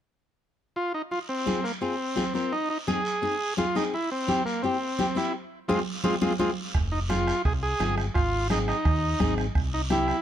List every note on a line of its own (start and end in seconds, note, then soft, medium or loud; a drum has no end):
0.76 0.93 F4 medium
0.94 1.02 D#4 medium
1.11 1.19 F4 medium
1.11 high conga soft
1.11 long guiro medium
1.29 1.65 C4 medium
1.46 1.59 C4 medium
1.46 1.59 F4 medium
1.46 1.59 G#4 medium
1.46 high conga medium
1.46 short guiro medium
1.64 1.72 A#3 medium
1.64 short guiro medium
1.81 1.94 C4 medium
1.81 2.34 C4 medium
1.81 1.94 F4 soft
1.81 1.94 G#4 medium
1.81 high conga soft
1.81 long guiro medium
2.16 2.23 C4 medium
2.16 2.23 F4 medium
2.16 2.23 G#4 medium
2.16 high conga medium
2.16 short guiro medium
2.34 2.52 C4 medium
2.34 2.53 C4 medium
2.34 2.52 F4 medium
2.34 2.52 A#4 medium
2.34 short guiro medium
2.52 2.69 D#4 medium
2.52 high conga soft
2.52 long guiro medium
2.70 2.78 D#4 medium
2.87 3.00 C4 medium
2.87 3.00 D#4 medium
2.87 3.54 G#4 medium
2.87 3.00 G#4 medium
2.87 high conga medium
2.87 short guiro medium
3.05 short guiro medium
3.22 3.35 C4 medium
3.22 3.35 D#4 soft
3.22 3.35 G#4 medium
3.22 high conga soft
3.22 long guiro medium
3.57 3.64 C4 medium
3.57 3.64 D#4 medium
3.57 3.76 F4 medium
3.57 3.64 G#4 medium
3.57 high conga medium
3.57 short guiro medium
3.75 3.93 C4 medium
3.75 3.93 D#4 medium
3.75 3.84 D#4 medium
3.75 3.93 G#4 medium
3.75 short guiro medium
3.93 4.10 E4 medium
3.93 high conga soft
3.93 long guiro medium
4.11 4.44 C4 medium
4.27 4.40 C4 medium
4.27 4.40 E4 medium
4.27 4.40 G4 medium
4.27 high conga medium
4.27 short guiro medium
4.45 4.62 A#3 medium
4.45 short guiro medium
4.62 5.17 C4 medium
4.62 4.76 C4 medium
4.62 4.76 E4 medium
4.62 4.76 G4 medium
4.62 high conga soft
4.62 long guiro medium
4.99 5.05 C4 medium
4.99 5.05 E4 medium
4.99 5.05 G4 medium
4.99 high conga medium
4.99 short guiro medium
5.15 5.33 C4 medium
5.15 5.34 E4 medium
5.15 5.33 E4 medium
5.15 5.34 G4 medium
5.15 short guiro medium
5.68 5.80 G#3 medium
5.68 5.80 C4 medium
5.68 5.80 F4 medium
5.68 5.80 G#4 medium
5.68 high conga medium
5.68 long guiro medium
6.04 6.16 G#3 medium
6.04 6.15 C4 medium
6.04 6.15 F4 medium
6.04 6.15 G#4 medium
6.04 high conga medium
6.04 long guiro medium
6.21 6.33 G#3 medium
6.21 6.33 C4 medium
6.21 6.33 F4 medium
6.21 6.33 G#4 medium
6.21 high conga medium
6.21 long guiro medium
6.39 6.51 G#3 medium
6.39 6.50 C4 medium
6.39 6.51 C4 medium
6.39 6.50 F4 medium
6.39 6.51 F4 medium
6.39 6.50 G#4 medium
6.39 high conga medium
6.39 long guiro medium
6.74 7.31 F1 medium
6.74 bombo low medium
6.74 bombo rim medium
6.74 high conga soft
6.74 long guiro medium
6.92 7.00 D#4 medium
7.09 7.34 C4 medium
7.09 7.42 F4 medium
7.09 7.34 F4 medium
7.09 7.34 G#4 medium
7.09 bombo rim medium
7.09 high conga medium
7.09 short guiro medium
7.27 bombo rim medium
7.27 short guiro medium
7.45 7.73 C2 medium
7.45 7.53 G#4 medium
7.45 bombo low medium
7.45 bombo rim medium
7.45 high conga soft
7.45 long guiro medium
7.63 7.95 G#4 loud
7.80 8.08 G1 medium
7.80 8.04 C4 medium
7.80 8.05 F4 medium
7.80 8.05 G#4 medium
7.80 bombo rim medium
7.80 high conga medium
7.80 short guiro medium
7.98 bombo rim medium
7.98 short guiro medium
8.15 8.71 G#1 medium
8.15 8.47 F4 medium
8.15 bombo low medium
8.15 bombo rim medium
8.15 high conga soft
8.15 long guiro medium
8.50 8.74 C4 medium
8.50 8.75 D#4 medium
8.50 8.59 D#4 medium
8.50 8.75 G#4 medium
8.50 bombo rim medium
8.50 high conga medium
8.50 short guiro medium
8.68 9.34 D#4 medium
8.68 bombo rim medium
8.68 short guiro medium
8.85 9.13 D#2 loud
8.85 bombo low medium
8.85 bombo rim medium
8.85 high conga soft
8.85 long guiro medium
9.20 9.48 G#1 medium
9.20 9.45 C4 medium
9.20 9.45 D#4 medium
9.20 9.45 G#4 medium
9.20 bombo low medium
9.20 bombo rim medium
9.20 high conga medium
9.20 short guiro medium
9.38 bombo rim medium
9.38 short guiro medium
9.55 10.11 C2 medium
9.55 bombo low medium
9.55 bombo rim medium
9.55 high conga soft
9.55 long guiro medium
9.74 9.82 D#4 medium
9.90 10.15 C4 medium
9.90 10.15 E4 medium
9.90 10.22 E4 medium
9.90 10.15 G4 medium
9.90 bombo rim medium
9.90 high conga medium
9.90 short guiro medium
10.08 bombo rim medium
10.08 short guiro medium